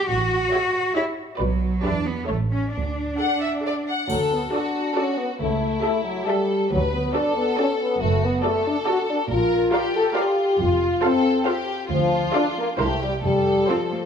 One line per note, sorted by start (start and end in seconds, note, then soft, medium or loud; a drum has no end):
0.09 0.44 A1 medium
0.09 0.94 F#4 medium
0.52 0.85 G4 medium
0.52 0.85 C#5 medium
0.52 0.85 E5 medium
0.95 1.03 E4 medium
0.95 1.29 G4 medium
0.95 1.29 C#5 medium
0.95 1.28 E5 medium
1.39 1.74 B1 medium
1.39 1.81 F#3 medium
1.39 1.73 F#4 soft
1.39 1.72 B4 soft
1.39 1.72 D5 medium
1.84 2.19 E2 medium
1.84 2.06 D4 medium
1.84 2.17 G4 medium
1.84 2.17 B4 soft
1.84 2.17 E5 soft
2.06 2.28 B3 medium
2.28 2.64 A1 medium
2.28 2.37 A3 medium
2.28 2.62 A4 soft
2.28 2.61 C#5 soft
2.28 2.62 E5 soft
2.51 2.73 C#4 medium
2.73 3.10 D2 soft
2.73 3.84 D4 medium
3.19 3.53 A4 soft
3.19 3.52 F#5 soft
3.19 3.40 F#5 soft
3.43 3.51 E5 soft
3.65 3.99 A4 soft
3.65 3.74 D5 soft
3.65 3.98 F#5 soft
3.89 4.10 F#5 soft
4.08 4.44 D2 medium
4.08 4.45 D2 medium
4.08 4.18 F#3 medium
4.08 4.50 A4 medium
4.08 triangle soft
4.32 4.41 B3 medium
4.52 4.95 D4 medium
4.52 5.41 F#4 medium
4.52 4.86 F#4 medium
4.52 4.86 A4 soft
4.52 4.86 D5 soft
4.96 5.18 C#4 medium
4.96 5.30 F#4 medium
4.96 5.30 A4 medium
4.96 5.30 A4 soft
4.96 5.29 D5 soft
5.17 5.28 B3 medium
5.40 5.75 C#2 medium
5.40 5.76 C#2 medium
5.40 5.82 A3 medium
5.40 6.27 E4 medium
5.83 6.05 A3 medium
5.83 6.17 G4 soft
5.83 6.17 A4 medium
5.83 6.17 A4 soft
5.83 6.17 E5 soft
6.04 6.27 F#3 medium
6.26 6.70 G3 medium
6.26 6.61 G4 soft
6.26 6.72 A4 medium
6.26 6.61 A4 medium
6.26 6.61 E5 medium
6.30 6.62 A4 medium
6.70 7.06 D2 medium
6.70 6.80 F#3 medium
6.70 7.14 B4 medium
6.92 7.14 B3 medium
7.15 7.36 D4 medium
7.15 7.48 F#4 soft
7.15 7.99 A4 medium
7.15 7.47 A4 soft
7.15 7.48 A4 medium
7.15 7.47 D5 soft
7.36 7.58 B3 medium
7.58 7.68 C#4 medium
7.58 7.90 F#4 soft
7.58 7.90 A4 medium
7.58 7.90 A4 soft
7.58 7.90 D5 medium
7.81 8.01 B3 medium
8.01 8.35 F#1 medium
8.01 8.35 F#2 medium
8.01 8.23 A3 medium
8.01 8.43 F#4 medium
8.25 8.45 B3 medium
8.44 8.66 A3 medium
8.44 8.76 F#4 medium
8.44 8.76 A4 medium
8.44 8.76 A4 soft
8.44 9.29 A4 medium
8.44 8.76 D5 medium
8.67 8.76 D4 medium
8.87 9.20 F#4 medium
8.87 8.98 F#4 medium
8.87 9.19 A4 medium
8.87 9.19 D5 medium
9.10 9.20 D4 medium
9.30 9.64 A#1 medium
9.30 9.64 A#2 medium
9.30 9.94 F4 medium
9.30 9.72 A#4 medium
9.73 10.05 F4 medium
9.73 10.15 G4 medium
9.73 10.05 A#4 medium
9.73 10.06 D5 medium
9.73 10.06 F5 medium
9.96 10.06 A4 medium
10.15 10.48 F4 medium
10.15 11.04 F4 medium
10.15 10.60 G4 medium
10.15 10.48 A#4 medium
10.15 10.49 D5 medium
10.15 10.49 F5 medium
10.60 10.94 F1 medium
10.60 10.94 F2 medium
10.60 11.03 F4 medium
11.03 11.46 C4 medium
11.03 11.35 F4 medium
11.03 11.36 A4 medium
11.03 11.46 A4 medium
11.03 11.36 C5 medium
11.03 11.36 F5 medium
11.46 11.79 F4 medium
11.46 11.90 G4 medium
11.46 11.79 A4 medium
11.46 11.79 C5 medium
11.46 11.79 F5 medium
11.89 12.25 D2 medium
11.89 12.31 F3 medium
11.89 12.76 F4 medium
12.35 12.45 D4 medium
12.35 12.68 F4 medium
12.35 12.67 A4 medium
12.35 12.68 D5 medium
12.35 12.68 F5 medium
12.58 12.67 A#3 medium
12.79 13.14 C2 medium
12.79 13.01 A3 medium
12.79 13.13 E4 medium
12.79 13.23 G4 medium
12.79 13.13 A#4 medium
12.79 13.13 C5 medium
13.03 13.13 G3 medium
13.24 13.60 F1 medium
13.24 13.60 F2 medium
13.24 13.68 G3 medium
13.24 14.06 A4 medium
13.69 14.06 F3 medium
13.69 13.77 C4 medium
13.69 14.03 F4 medium
13.69 14.03 A4 medium
13.69 14.03 C5 soft
13.92 14.00 A#3 soft